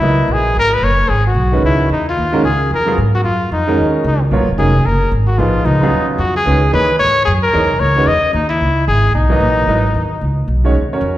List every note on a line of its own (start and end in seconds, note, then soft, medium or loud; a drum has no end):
0.00 0.27 C#2 medium
0.00 0.76 F#3 medium
0.00 0.76 B3 soft
0.00 0.34 E4 medium
0.00 0.76 E4 medium
0.00 0.76 A#4 soft
0.00 0.77 D#5 medium
0.28 0.54 A#1 medium
0.33 0.58 G#4 medium
0.55 0.81 G#1 medium
0.59 0.76 A#4 medium
0.74 0.85 B4 medium
0.82 1.08 F#1 medium
0.82 1.11 C#5 medium
1.09 1.34 G#1 medium
1.09 1.26 G#4 medium
1.27 1.61 F#4 medium
1.34 1.61 B1 medium
1.52 1.88 D#3 medium
1.52 1.88 G#3 soft
1.52 1.88 C#4 medium
1.52 1.88 F#4 medium
1.52 1.88 B4 medium
1.63 1.89 C#2 medium
1.63 1.89 E4 medium
1.89 2.16 E2 medium
1.89 2.06 D#4 medium
2.09 2.43 F4 medium
2.17 2.43 D#2 medium
2.32 2.42 D#3 medium
2.32 2.42 G#3 medium
2.32 2.43 C#4 medium
2.32 2.43 F#4 medium
2.32 2.43 A#4 medium
2.44 2.70 C#2 medium
2.44 2.69 G#4 medium
2.71 2.97 F2 medium
2.71 2.97 A#4 medium
2.86 2.96 C#3 medium
2.86 2.96 F#3 medium
2.86 2.97 B3 medium
2.86 2.97 F4 medium
2.86 2.97 G#4 medium
2.98 3.24 G#2 medium
3.15 3.19 F#4 medium
3.24 3.50 F#2 medium
3.24 3.49 F4 medium
3.52 3.77 F2 medium
3.52 3.92 D#4 medium
3.67 4.02 D#3 medium
3.67 4.03 G#3 medium
3.67 4.03 C#4 medium
3.67 4.03 F#4 medium
3.67 4.03 A#4 medium
3.78 4.04 D#2 medium
4.04 4.30 C#2 medium
4.04 4.21 D#4 medium
4.31 4.40 A#1 medium
4.31 4.46 F#3 medium
4.31 4.46 B3 soft
4.31 4.47 F4 medium
4.31 4.47 A#4 medium
4.31 4.47 C#5 medium
4.40 4.49 F#1 soft
4.49 4.58 D#1 medium
4.57 4.85 F1 medium
4.57 4.72 D#3 medium
4.57 4.73 G#3 soft
4.57 4.73 C#4 soft
4.57 4.73 F#4 soft
4.57 4.87 G#4 medium
4.57 4.73 A#4 medium
4.85 5.11 F#1 medium
4.85 5.12 A#4 medium
5.12 5.38 G#1 medium
5.27 5.40 F#4 medium
5.38 5.65 A#1 medium
5.38 5.78 A#2 soft
5.38 5.78 F3 medium
5.38 5.79 D#4 soft
5.38 5.67 F4 medium
5.38 5.79 G#4 soft
5.38 5.79 B4 medium
5.65 5.91 C#2 medium
5.65 6.08 D#4 medium
5.81 6.17 C#3 medium
5.81 6.17 F#3 medium
5.81 6.18 B3 medium
5.81 6.18 F4 medium
5.81 6.18 G#4 medium
5.92 6.17 D#2 medium
6.18 6.45 F2 medium
6.18 6.34 F#4 medium
6.36 6.71 G#4 medium
6.45 6.72 C#2 medium
6.45 6.60 D#3 soft
6.45 6.60 G#3 soft
6.45 6.60 C#4 soft
6.45 6.61 F#4 medium
6.45 6.61 B4 medium
6.72 6.99 D#2 medium
6.72 6.87 E3 medium
6.72 6.87 A#3 soft
6.72 6.87 D#4 medium
6.72 6.88 G#4 medium
6.72 6.98 B4 medium
6.72 6.88 C#5 medium
6.99 7.26 G#2 medium
6.99 7.24 C#5 medium
7.25 7.53 F#2 medium
7.25 7.33 G#4 medium
7.43 7.81 A#4 medium
7.53 7.64 E2 medium
7.53 7.68 E3 medium
7.53 7.68 A#3 soft
7.53 7.68 D#4 medium
7.53 7.68 G#4 medium
7.53 7.69 C#5 medium
7.63 7.71 C#2 medium
7.71 7.79 B1 medium
7.80 8.06 C#2 medium
7.80 8.09 C#5 medium
7.96 8.06 D#3 medium
7.96 8.06 G#3 medium
7.96 8.06 C#4 medium
7.96 8.07 F#4 medium
7.96 8.07 B4 medium
8.06 8.22 E2 medium
8.06 8.34 D#5 loud
8.23 muted upright bass stroke soft
8.33 8.59 D#2 medium
8.33 8.48 D#4 medium
8.49 8.84 E4 medium
8.61 8.87 C#2 medium
8.87 9.14 G#1 medium
8.87 9.13 G#4 medium
9.15 9.40 B1 medium
9.15 10.45 D#4 medium
9.29 9.66 E3 medium
9.29 9.65 F#3 medium
9.29 9.65 B3 medium
9.29 9.66 A#4 medium
9.29 9.66 D#5 medium
9.40 9.67 A#1 medium
9.67 9.94 G#1 medium
9.67 9.82 F#3 soft
9.67 9.82 B3 soft
9.67 9.83 E4 soft
9.67 9.83 A#4 soft
9.67 9.83 D#5 medium
9.94 10.20 D#2 medium
10.21 10.47 C#2 medium
10.48 10.74 B1 medium
10.64 10.74 D#3 medium
10.64 10.74 G#3 medium
10.64 10.74 C#4 medium
10.64 10.74 F#4 soft
10.64 10.75 C#5 medium
10.74 11.00 D#2 medium
10.93 11.18 C#4 medium
10.93 11.18 F#4 soft
10.93 11.18 A#4 medium
10.93 11.18 C#5 medium
11.01 11.18 F2 medium